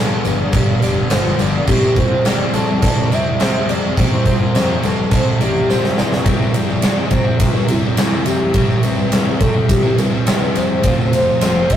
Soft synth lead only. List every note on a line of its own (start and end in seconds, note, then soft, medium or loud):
0.00 0.54 B4 loud
0.53 1.12 G4 medium
1.10 1.54 F4 medium
1.67 1.99 G4 loud
1.98 2.27 C5 loud
2.26 2.54 D5 medium
2.55 2.81 D5 medium
2.85 3.15 D5 loud
3.14 3.72 E5 loud
3.70 4.01 D5 loud
3.99 4.87 C5 loud
4.85 5.13 B4 medium
5.15 5.40 C5 medium
5.40 5.99 G4 loud
5.97 6.55 B4 medium
6.54 7.12 D5 loud
7.11 7.39 C5 loud
7.39 7.70 B4 medium
7.69 8.26 E4 medium
8.25 8.83 G4 loud
8.82 9.41 B4 loud
9.40 9.67 A4 loud
9.68 10.00 G4 loud
9.99 10.26 B4 medium
10.27 10.58 B4 loud
10.57 11.14 C5 loud
11.15 11.73 C5 loud
11.72 11.77 E5 loud